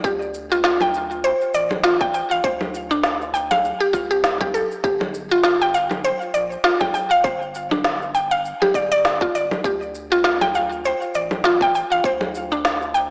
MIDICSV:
0, 0, Header, 1, 4, 480
1, 0, Start_track
1, 0, Tempo, 600000
1, 34, Time_signature, 4, 2, 24, 8
1, 10483, End_track
2, 0, Start_track
2, 0, Title_t, "Synth pluck"
2, 0, Program_c, 0, 84
2, 35, Note_on_c, 0, 67, 75
2, 163, Note_off_c, 0, 67, 0
2, 413, Note_on_c, 0, 65, 92
2, 508, Note_off_c, 0, 65, 0
2, 518, Note_on_c, 0, 65, 97
2, 644, Note_off_c, 0, 65, 0
2, 652, Note_on_c, 0, 79, 93
2, 750, Note_off_c, 0, 79, 0
2, 992, Note_on_c, 0, 72, 80
2, 1121, Note_off_c, 0, 72, 0
2, 1235, Note_on_c, 0, 74, 76
2, 1363, Note_off_c, 0, 74, 0
2, 1470, Note_on_c, 0, 65, 101
2, 1600, Note_off_c, 0, 65, 0
2, 1608, Note_on_c, 0, 79, 100
2, 1704, Note_off_c, 0, 79, 0
2, 1713, Note_on_c, 0, 79, 69
2, 1835, Note_off_c, 0, 79, 0
2, 1849, Note_on_c, 0, 77, 97
2, 1948, Note_off_c, 0, 77, 0
2, 1953, Note_on_c, 0, 72, 77
2, 2082, Note_off_c, 0, 72, 0
2, 2326, Note_on_c, 0, 62, 73
2, 2427, Note_off_c, 0, 62, 0
2, 2670, Note_on_c, 0, 79, 71
2, 2793, Note_off_c, 0, 79, 0
2, 2807, Note_on_c, 0, 77, 103
2, 2908, Note_off_c, 0, 77, 0
2, 3043, Note_on_c, 0, 67, 76
2, 3146, Note_off_c, 0, 67, 0
2, 3146, Note_on_c, 0, 65, 73
2, 3278, Note_off_c, 0, 65, 0
2, 3285, Note_on_c, 0, 67, 80
2, 3381, Note_off_c, 0, 67, 0
2, 3529, Note_on_c, 0, 67, 73
2, 3623, Note_off_c, 0, 67, 0
2, 3633, Note_on_c, 0, 69, 73
2, 3762, Note_off_c, 0, 69, 0
2, 3873, Note_on_c, 0, 67, 77
2, 4002, Note_off_c, 0, 67, 0
2, 4251, Note_on_c, 0, 65, 95
2, 4347, Note_off_c, 0, 65, 0
2, 4356, Note_on_c, 0, 65, 100
2, 4483, Note_off_c, 0, 65, 0
2, 4492, Note_on_c, 0, 79, 93
2, 4590, Note_off_c, 0, 79, 0
2, 4595, Note_on_c, 0, 77, 76
2, 4722, Note_off_c, 0, 77, 0
2, 4836, Note_on_c, 0, 72, 78
2, 4963, Note_off_c, 0, 72, 0
2, 5072, Note_on_c, 0, 74, 71
2, 5201, Note_off_c, 0, 74, 0
2, 5312, Note_on_c, 0, 65, 107
2, 5441, Note_off_c, 0, 65, 0
2, 5445, Note_on_c, 0, 79, 98
2, 5542, Note_off_c, 0, 79, 0
2, 5552, Note_on_c, 0, 79, 75
2, 5674, Note_off_c, 0, 79, 0
2, 5686, Note_on_c, 0, 77, 102
2, 5787, Note_off_c, 0, 77, 0
2, 5792, Note_on_c, 0, 72, 75
2, 5921, Note_off_c, 0, 72, 0
2, 6170, Note_on_c, 0, 62, 71
2, 6269, Note_off_c, 0, 62, 0
2, 6517, Note_on_c, 0, 79, 78
2, 6637, Note_off_c, 0, 79, 0
2, 6650, Note_on_c, 0, 77, 98
2, 6749, Note_off_c, 0, 77, 0
2, 6894, Note_on_c, 0, 67, 76
2, 6991, Note_off_c, 0, 67, 0
2, 6999, Note_on_c, 0, 74, 78
2, 7118, Note_off_c, 0, 74, 0
2, 7133, Note_on_c, 0, 74, 107
2, 7357, Note_off_c, 0, 74, 0
2, 7375, Note_on_c, 0, 65, 78
2, 7472, Note_off_c, 0, 65, 0
2, 7480, Note_on_c, 0, 74, 77
2, 7605, Note_off_c, 0, 74, 0
2, 7722, Note_on_c, 0, 67, 74
2, 7846, Note_off_c, 0, 67, 0
2, 8093, Note_on_c, 0, 65, 97
2, 8186, Note_off_c, 0, 65, 0
2, 8196, Note_on_c, 0, 65, 98
2, 8323, Note_off_c, 0, 65, 0
2, 8331, Note_on_c, 0, 79, 101
2, 8430, Note_off_c, 0, 79, 0
2, 8441, Note_on_c, 0, 77, 76
2, 8566, Note_off_c, 0, 77, 0
2, 8683, Note_on_c, 0, 72, 81
2, 8807, Note_off_c, 0, 72, 0
2, 8922, Note_on_c, 0, 74, 73
2, 9046, Note_off_c, 0, 74, 0
2, 9162, Note_on_c, 0, 65, 95
2, 9286, Note_off_c, 0, 65, 0
2, 9297, Note_on_c, 0, 79, 106
2, 9393, Note_off_c, 0, 79, 0
2, 9401, Note_on_c, 0, 79, 75
2, 9519, Note_off_c, 0, 79, 0
2, 9533, Note_on_c, 0, 77, 98
2, 9631, Note_off_c, 0, 77, 0
2, 9642, Note_on_c, 0, 72, 80
2, 9766, Note_off_c, 0, 72, 0
2, 10014, Note_on_c, 0, 62, 75
2, 10111, Note_off_c, 0, 62, 0
2, 10354, Note_on_c, 0, 79, 74
2, 10475, Note_off_c, 0, 79, 0
2, 10483, End_track
3, 0, Start_track
3, 0, Title_t, "Sub bass"
3, 0, Program_c, 1, 38
3, 32, Note_on_c, 1, 38, 102
3, 1062, Note_off_c, 1, 38, 0
3, 1231, Note_on_c, 1, 33, 93
3, 1781, Note_off_c, 1, 33, 0
3, 1847, Note_on_c, 1, 33, 87
3, 1921, Note_off_c, 1, 33, 0
3, 1951, Note_on_c, 1, 38, 91
3, 2981, Note_off_c, 1, 38, 0
3, 3150, Note_on_c, 1, 36, 98
3, 3701, Note_off_c, 1, 36, 0
3, 3869, Note_on_c, 1, 31, 92
3, 4900, Note_off_c, 1, 31, 0
3, 5077, Note_on_c, 1, 34, 98
3, 5251, Note_off_c, 1, 34, 0
3, 5794, Note_on_c, 1, 31, 99
3, 6823, Note_off_c, 1, 31, 0
3, 6994, Note_on_c, 1, 31, 105
3, 7422, Note_off_c, 1, 31, 0
3, 7476, Note_on_c, 1, 31, 96
3, 7650, Note_off_c, 1, 31, 0
3, 7715, Note_on_c, 1, 38, 97
3, 8743, Note_off_c, 1, 38, 0
3, 8915, Note_on_c, 1, 33, 99
3, 9463, Note_off_c, 1, 33, 0
3, 9530, Note_on_c, 1, 33, 92
3, 9602, Note_off_c, 1, 33, 0
3, 9631, Note_on_c, 1, 38, 98
3, 10483, Note_off_c, 1, 38, 0
3, 10483, End_track
4, 0, Start_track
4, 0, Title_t, "Drums"
4, 32, Note_on_c, 9, 36, 113
4, 38, Note_on_c, 9, 82, 46
4, 112, Note_off_c, 9, 36, 0
4, 118, Note_off_c, 9, 82, 0
4, 173, Note_on_c, 9, 82, 23
4, 253, Note_off_c, 9, 82, 0
4, 274, Note_on_c, 9, 82, 78
4, 354, Note_off_c, 9, 82, 0
4, 411, Note_on_c, 9, 82, 32
4, 491, Note_off_c, 9, 82, 0
4, 510, Note_on_c, 9, 38, 99
4, 515, Note_on_c, 9, 82, 44
4, 590, Note_off_c, 9, 38, 0
4, 595, Note_off_c, 9, 82, 0
4, 645, Note_on_c, 9, 64, 71
4, 650, Note_on_c, 9, 82, 22
4, 725, Note_off_c, 9, 64, 0
4, 730, Note_off_c, 9, 82, 0
4, 753, Note_on_c, 9, 82, 74
4, 833, Note_off_c, 9, 82, 0
4, 889, Note_on_c, 9, 82, 33
4, 969, Note_off_c, 9, 82, 0
4, 994, Note_on_c, 9, 82, 47
4, 1074, Note_off_c, 9, 82, 0
4, 1130, Note_on_c, 9, 82, 23
4, 1210, Note_off_c, 9, 82, 0
4, 1233, Note_on_c, 9, 82, 76
4, 1313, Note_off_c, 9, 82, 0
4, 1366, Note_on_c, 9, 64, 67
4, 1370, Note_on_c, 9, 82, 32
4, 1446, Note_off_c, 9, 64, 0
4, 1450, Note_off_c, 9, 82, 0
4, 1468, Note_on_c, 9, 38, 101
4, 1473, Note_on_c, 9, 82, 45
4, 1548, Note_off_c, 9, 38, 0
4, 1553, Note_off_c, 9, 82, 0
4, 1605, Note_on_c, 9, 36, 106
4, 1608, Note_on_c, 9, 82, 23
4, 1685, Note_off_c, 9, 36, 0
4, 1688, Note_off_c, 9, 82, 0
4, 1713, Note_on_c, 9, 82, 74
4, 1793, Note_off_c, 9, 82, 0
4, 1851, Note_on_c, 9, 82, 31
4, 1931, Note_off_c, 9, 82, 0
4, 1951, Note_on_c, 9, 36, 105
4, 1954, Note_on_c, 9, 82, 42
4, 2031, Note_off_c, 9, 36, 0
4, 2034, Note_off_c, 9, 82, 0
4, 2085, Note_on_c, 9, 64, 68
4, 2090, Note_on_c, 9, 82, 21
4, 2165, Note_off_c, 9, 64, 0
4, 2170, Note_off_c, 9, 82, 0
4, 2196, Note_on_c, 9, 82, 74
4, 2276, Note_off_c, 9, 82, 0
4, 2330, Note_on_c, 9, 82, 29
4, 2410, Note_off_c, 9, 82, 0
4, 2428, Note_on_c, 9, 38, 93
4, 2432, Note_on_c, 9, 82, 44
4, 2508, Note_off_c, 9, 38, 0
4, 2512, Note_off_c, 9, 82, 0
4, 2573, Note_on_c, 9, 82, 22
4, 2653, Note_off_c, 9, 82, 0
4, 2676, Note_on_c, 9, 82, 75
4, 2756, Note_off_c, 9, 82, 0
4, 2810, Note_on_c, 9, 64, 69
4, 2815, Note_on_c, 9, 82, 32
4, 2890, Note_off_c, 9, 64, 0
4, 2895, Note_off_c, 9, 82, 0
4, 2919, Note_on_c, 9, 82, 45
4, 2999, Note_off_c, 9, 82, 0
4, 3052, Note_on_c, 9, 82, 21
4, 3132, Note_off_c, 9, 82, 0
4, 3150, Note_on_c, 9, 36, 62
4, 3155, Note_on_c, 9, 82, 78
4, 3230, Note_off_c, 9, 36, 0
4, 3235, Note_off_c, 9, 82, 0
4, 3288, Note_on_c, 9, 82, 33
4, 3368, Note_off_c, 9, 82, 0
4, 3390, Note_on_c, 9, 38, 92
4, 3395, Note_on_c, 9, 82, 45
4, 3470, Note_off_c, 9, 38, 0
4, 3475, Note_off_c, 9, 82, 0
4, 3525, Note_on_c, 9, 36, 107
4, 3526, Note_on_c, 9, 64, 71
4, 3530, Note_on_c, 9, 82, 22
4, 3605, Note_off_c, 9, 36, 0
4, 3606, Note_off_c, 9, 64, 0
4, 3610, Note_off_c, 9, 82, 0
4, 3638, Note_on_c, 9, 82, 76
4, 3718, Note_off_c, 9, 82, 0
4, 3772, Note_on_c, 9, 82, 32
4, 3852, Note_off_c, 9, 82, 0
4, 3871, Note_on_c, 9, 36, 106
4, 3874, Note_on_c, 9, 82, 39
4, 3951, Note_off_c, 9, 36, 0
4, 3954, Note_off_c, 9, 82, 0
4, 4008, Note_on_c, 9, 64, 68
4, 4013, Note_on_c, 9, 82, 21
4, 4088, Note_off_c, 9, 64, 0
4, 4093, Note_off_c, 9, 82, 0
4, 4114, Note_on_c, 9, 82, 73
4, 4194, Note_off_c, 9, 82, 0
4, 4247, Note_on_c, 9, 82, 30
4, 4327, Note_off_c, 9, 82, 0
4, 4348, Note_on_c, 9, 38, 93
4, 4353, Note_on_c, 9, 82, 45
4, 4428, Note_off_c, 9, 38, 0
4, 4433, Note_off_c, 9, 82, 0
4, 4492, Note_on_c, 9, 82, 21
4, 4572, Note_off_c, 9, 82, 0
4, 4595, Note_on_c, 9, 82, 75
4, 4675, Note_off_c, 9, 82, 0
4, 4726, Note_on_c, 9, 64, 71
4, 4731, Note_on_c, 9, 82, 32
4, 4806, Note_off_c, 9, 64, 0
4, 4811, Note_off_c, 9, 82, 0
4, 4834, Note_on_c, 9, 82, 42
4, 4914, Note_off_c, 9, 82, 0
4, 4971, Note_on_c, 9, 82, 21
4, 5051, Note_off_c, 9, 82, 0
4, 5075, Note_on_c, 9, 82, 77
4, 5155, Note_off_c, 9, 82, 0
4, 5213, Note_on_c, 9, 82, 31
4, 5293, Note_off_c, 9, 82, 0
4, 5312, Note_on_c, 9, 38, 89
4, 5316, Note_on_c, 9, 82, 40
4, 5392, Note_off_c, 9, 38, 0
4, 5396, Note_off_c, 9, 82, 0
4, 5448, Note_on_c, 9, 36, 103
4, 5448, Note_on_c, 9, 64, 75
4, 5452, Note_on_c, 9, 82, 21
4, 5528, Note_off_c, 9, 36, 0
4, 5528, Note_off_c, 9, 64, 0
4, 5532, Note_off_c, 9, 82, 0
4, 5556, Note_on_c, 9, 82, 72
4, 5636, Note_off_c, 9, 82, 0
4, 5694, Note_on_c, 9, 82, 30
4, 5774, Note_off_c, 9, 82, 0
4, 5793, Note_on_c, 9, 36, 97
4, 5800, Note_on_c, 9, 82, 40
4, 5873, Note_off_c, 9, 36, 0
4, 5880, Note_off_c, 9, 82, 0
4, 5934, Note_on_c, 9, 82, 20
4, 6014, Note_off_c, 9, 82, 0
4, 6038, Note_on_c, 9, 82, 69
4, 6118, Note_off_c, 9, 82, 0
4, 6171, Note_on_c, 9, 64, 70
4, 6176, Note_on_c, 9, 82, 27
4, 6251, Note_off_c, 9, 64, 0
4, 6256, Note_off_c, 9, 82, 0
4, 6276, Note_on_c, 9, 38, 89
4, 6280, Note_on_c, 9, 82, 42
4, 6356, Note_off_c, 9, 38, 0
4, 6360, Note_off_c, 9, 82, 0
4, 6416, Note_on_c, 9, 82, 20
4, 6496, Note_off_c, 9, 82, 0
4, 6519, Note_on_c, 9, 82, 74
4, 6599, Note_off_c, 9, 82, 0
4, 6655, Note_on_c, 9, 82, 29
4, 6735, Note_off_c, 9, 82, 0
4, 6762, Note_on_c, 9, 82, 44
4, 6842, Note_off_c, 9, 82, 0
4, 6896, Note_on_c, 9, 64, 76
4, 6901, Note_on_c, 9, 82, 20
4, 6976, Note_off_c, 9, 64, 0
4, 6981, Note_off_c, 9, 82, 0
4, 6994, Note_on_c, 9, 36, 58
4, 7003, Note_on_c, 9, 82, 76
4, 7074, Note_off_c, 9, 36, 0
4, 7083, Note_off_c, 9, 82, 0
4, 7142, Note_on_c, 9, 82, 30
4, 7222, Note_off_c, 9, 82, 0
4, 7239, Note_on_c, 9, 38, 92
4, 7244, Note_on_c, 9, 82, 45
4, 7319, Note_off_c, 9, 38, 0
4, 7324, Note_off_c, 9, 82, 0
4, 7369, Note_on_c, 9, 36, 97
4, 7378, Note_on_c, 9, 82, 20
4, 7449, Note_off_c, 9, 36, 0
4, 7458, Note_off_c, 9, 82, 0
4, 7482, Note_on_c, 9, 82, 70
4, 7562, Note_off_c, 9, 82, 0
4, 7611, Note_on_c, 9, 64, 77
4, 7616, Note_on_c, 9, 82, 30
4, 7691, Note_off_c, 9, 64, 0
4, 7696, Note_off_c, 9, 82, 0
4, 7715, Note_on_c, 9, 36, 96
4, 7718, Note_on_c, 9, 82, 42
4, 7795, Note_off_c, 9, 36, 0
4, 7798, Note_off_c, 9, 82, 0
4, 7856, Note_on_c, 9, 82, 20
4, 7936, Note_off_c, 9, 82, 0
4, 7958, Note_on_c, 9, 82, 68
4, 8038, Note_off_c, 9, 82, 0
4, 8094, Note_on_c, 9, 82, 28
4, 8174, Note_off_c, 9, 82, 0
4, 8193, Note_on_c, 9, 38, 95
4, 8198, Note_on_c, 9, 82, 39
4, 8273, Note_off_c, 9, 38, 0
4, 8278, Note_off_c, 9, 82, 0
4, 8330, Note_on_c, 9, 64, 82
4, 8335, Note_on_c, 9, 82, 19
4, 8410, Note_off_c, 9, 64, 0
4, 8415, Note_off_c, 9, 82, 0
4, 8437, Note_on_c, 9, 82, 73
4, 8517, Note_off_c, 9, 82, 0
4, 8574, Note_on_c, 9, 82, 31
4, 8654, Note_off_c, 9, 82, 0
4, 8678, Note_on_c, 9, 82, 43
4, 8758, Note_off_c, 9, 82, 0
4, 8812, Note_on_c, 9, 82, 22
4, 8892, Note_off_c, 9, 82, 0
4, 8916, Note_on_c, 9, 82, 73
4, 8996, Note_off_c, 9, 82, 0
4, 9048, Note_on_c, 9, 64, 83
4, 9053, Note_on_c, 9, 82, 31
4, 9128, Note_off_c, 9, 64, 0
4, 9133, Note_off_c, 9, 82, 0
4, 9152, Note_on_c, 9, 38, 91
4, 9157, Note_on_c, 9, 82, 42
4, 9232, Note_off_c, 9, 38, 0
4, 9237, Note_off_c, 9, 82, 0
4, 9287, Note_on_c, 9, 36, 96
4, 9293, Note_on_c, 9, 82, 20
4, 9367, Note_off_c, 9, 36, 0
4, 9373, Note_off_c, 9, 82, 0
4, 9399, Note_on_c, 9, 82, 72
4, 9479, Note_off_c, 9, 82, 0
4, 9534, Note_on_c, 9, 82, 28
4, 9614, Note_off_c, 9, 82, 0
4, 9632, Note_on_c, 9, 36, 105
4, 9637, Note_on_c, 9, 82, 41
4, 9712, Note_off_c, 9, 36, 0
4, 9717, Note_off_c, 9, 82, 0
4, 9767, Note_on_c, 9, 64, 70
4, 9772, Note_on_c, 9, 82, 21
4, 9847, Note_off_c, 9, 64, 0
4, 9852, Note_off_c, 9, 82, 0
4, 9878, Note_on_c, 9, 82, 76
4, 9958, Note_off_c, 9, 82, 0
4, 10014, Note_on_c, 9, 82, 30
4, 10094, Note_off_c, 9, 82, 0
4, 10118, Note_on_c, 9, 38, 99
4, 10123, Note_on_c, 9, 82, 44
4, 10198, Note_off_c, 9, 38, 0
4, 10203, Note_off_c, 9, 82, 0
4, 10255, Note_on_c, 9, 82, 20
4, 10335, Note_off_c, 9, 82, 0
4, 10359, Note_on_c, 9, 82, 72
4, 10439, Note_off_c, 9, 82, 0
4, 10483, End_track
0, 0, End_of_file